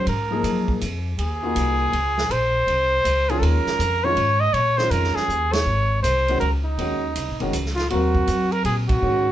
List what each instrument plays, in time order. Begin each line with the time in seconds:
0.06 upright bass G#2, trumpet A#4, ride
0.31 grand piano F3 A#3 D#4 G#4
0.43 upright bass F#2, hi-hat pedal, ride
0.68 kick
0.81 upright bass F2, hi-hat pedal, ride
1.18 upright bass D#2, trumpet G#4, ride
1.43 grand piano A#3 D#4 F4 F#4
1.55 upright bass C2, hi-hat pedal, ride
1.92 upright bass C#2, ride
2.18 snare
2.29 upright bass A#1, trumpet C5, ride
2.67 upright bass C2, ride
3.04 upright bass C#2, hi-hat pedal, ride
3.29 grand piano D#3 G#3 C#4 F4, trumpet G#4, ride
3.39 upright bass D#2, trumpet A4 A#4, ride
3.65 muted upright bass stroke, snare
3.79 upright bass F2, hi-hat pedal, ride
4.04 grand piano D#3 G#3 C#4 F4, trumpet C#5
4.16 upright bass G#2, ride
4.40 trumpet D#5
4.53 upright bass A#2, trumpet C#5, ride
4.77 grand piano D#3 G#3 C#4 F4, trumpet C5, snare
4.90 upright bass F2, trumpet A#4, hi-hat pedal, ride
5.04 snare
5.15 trumpet G#4, muted upright bass stroke, snare
5.28 upright bass D#2, hi-hat pedal
5.53 trumpet C#5, snare, ride
5.65 upright bass G#1
6.03 upright bass C2, trumpet C5, hi-hat pedal, ride
6.28 grand piano D#3 G#3 C#4 F#4, ride
6.40 upright bass C#2, trumpet A#4, ride
6.64 trumpet D#4
6.78 upright bass D#2, grand piano D#3 G#3 C#4 F#4, ride
7.15 upright bass C2, hi-hat pedal, ride
7.28 upright bass G#1
7.40 upright bass F#1, grand piano D#3 G#3 C#4 F#4, ride
7.53 upright bass C#2, hi-hat pedal, ride
7.66 snare
7.75 trumpet F4, snare, ride
7.90 upright bass D#2, grand piano F#3 C4 A#4 F5, trumpet F#4, ride
8.15 kick
8.27 upright bass F#2, hi-hat pedal, ride
8.52 trumpet A#4, ride
8.64 upright bass A#2, trumpet G#4, ride
8.89 trumpet F#4, kick, ride
9.02 upright bass G#2, grand piano D#3 G#3 C#4 F#4